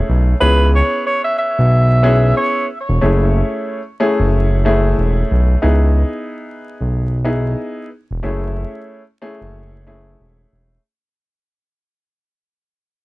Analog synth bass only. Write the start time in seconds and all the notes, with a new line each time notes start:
0.09 B1
0.42 C#2
1.59 B1
2.89 E1
3.03 F#1
4.20 F#1
4.98 E1
5.31 B1
5.64 C#2
6.81 B1
8.11 E1
8.24 F#1
9.41 F#1
10.20 E1
10.53 E1